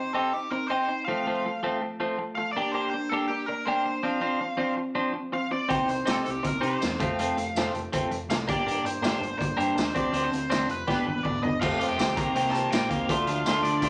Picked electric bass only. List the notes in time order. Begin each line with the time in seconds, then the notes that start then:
5.70 C2
5.89 C2
6.08 C2
6.27 C2
6.44 C2
6.63 C3
6.82 E2
7.00 F1
7.18 F1
7.37 F1
7.55 F1
7.74 F1
7.92 F1
8.10 F1
8.29 C2
8.48 G1
8.66 G1
8.84 G1
9.02 G1
9.20 G1
9.41 G1
9.59 G2
9.76 D#2
9.95 D2
10.12 D2
10.32 D2
10.51 D2
10.69 F1
10.88 G1
11.07 G1
11.25 D2
11.42 G1
11.61 F1
11.79 F1
11.98 D2
12.17 C2
12.36 C2
12.72 A#1
12.91 D#2
13.09 D2
13.26 D2
13.45 D2
13.64 D3
13.82 D2